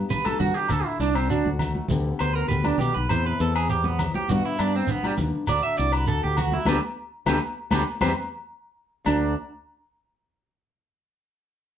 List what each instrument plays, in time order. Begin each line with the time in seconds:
Already playing: steel-string acoustic guitar G2 B3 G4
0.10 steel-string acoustic guitar D4, clean electric guitar B4, low conga, shekere
0.25 clean electric guitar A4, high conga, low agogo
0.39 fingered electric bass G2, steel-string acoustic guitar D3, clean electric guitar F#4, low conga
0.54 clean electric guitar G4
0.68 fingered electric bass D2, steel-string acoustic guitar D3 D4, clean electric guitar A4, low agogo, shekere
0.85 clean electric guitar E4
1.00 fingered electric bass C2, clean electric guitar D4, steel-string acoustic guitar D4, shekere
1.15 clean electric guitar C4, low agogo
1.30 fingered electric bass D2, clean electric guitar D4, steel-string acoustic guitar F#4, shekere
1.45 fingered electric bass D2, high conga
1.59 steel-string acoustic guitar A3, low conga, low agogo, shekere
1.75 high conga
1.88 fingered electric bass D2, steel-string acoustic guitar D3 B3 G4, low conga, shekere
2.19 fingered electric bass D2, steel-string acoustic guitar B3, clean electric guitar C5, low agogo, shekere
2.35 clean electric guitar A#4
2.48 fingered electric bass D2, steel-string acoustic guitar G4, clean electric guitar B4, low conga, shekere
2.64 clean electric guitar D4, high conga, low agogo
2.78 fingered electric bass B2, steel-string acoustic guitar G3, clean electric guitar G4, low conga, shekere
2.94 fingered electric bass B1, clean electric guitar B4
3.09 steel-string acoustic guitar E2 B3 C4 E4, fingered electric bass E2, clean electric guitar C5, low agogo, shekere
3.26 clean electric guitar B4
3.40 fingered electric bass E2, steel-string acoustic guitar B3, clean electric guitar A4, shekere
3.56 clean electric guitar G#4, low agogo
3.69 steel-string acoustic guitar E2, clean electric guitar G4, shekere
3.84 clean electric guitar B3, high conga
3.99 steel-string acoustic guitar F#2, low conga, low agogo, shekere
4.15 clean electric guitar G4, high conga
4.29 steel-string acoustic guitar G2 B3 D4, fingered electric bass G2, clean electric guitar F#4, low conga, shekere
4.45 clean electric guitar E4
4.59 fingered electric bass G2, steel-string acoustic guitar B3, clean electric guitar D4, low agogo, shekere
4.76 clean electric guitar C4
4.87 clean electric guitar B3, steel-string acoustic guitar D4, low conga, shekere
5.04 clean electric guitar G3, high conga, low agogo
5.17 fingered electric bass D#2, steel-string acoustic guitar D3, low conga, shekere
5.47 fingered electric bass D2, steel-string acoustic guitar D3 D4 F#4, clean electric guitar D5, low agogo, shekere
5.63 clean electric guitar E5
5.77 fingered electric bass C2, steel-string acoustic guitar D4, clean electric guitar D5, shekere
5.92 clean electric guitar B4, low agogo
6.07 fingered electric bass D2, steel-string acoustic guitar F#4, clean electric guitar A4, shekere
6.24 fingered electric bass D2, clean electric guitar G4
6.37 clean electric guitar F#4, muted steel-string acoustic guitar stroke, low conga, low agogo, shekere
6.52 clean electric guitar E4, high conga
6.66 fingered electric bass D2, steel-string acoustic guitar A3 B3 D4, clean electric guitar G4 A4 B4, high conga, low agogo, shekere
7.26 fingered electric bass D2, steel-string acoustic guitar A3 B3 D4, clean electric guitar G4 A4 B4, high conga, low agogo, shekere
7.70 fingered electric bass D2, steel-string acoustic guitar A3 B3 D4, clean electric guitar G4 A4 B4, high conga, low agogo, shekere
8.01 fingered electric bass E2, steel-string acoustic guitar G3 B3 C4, clean electric guitar G4 B4 C5, high conga, low agogo, shekere
9.04 fingered electric bass D2, steel-string acoustic guitar D3 A3 D4 F#4, clean electric guitar D4, high conga, low agogo, shekere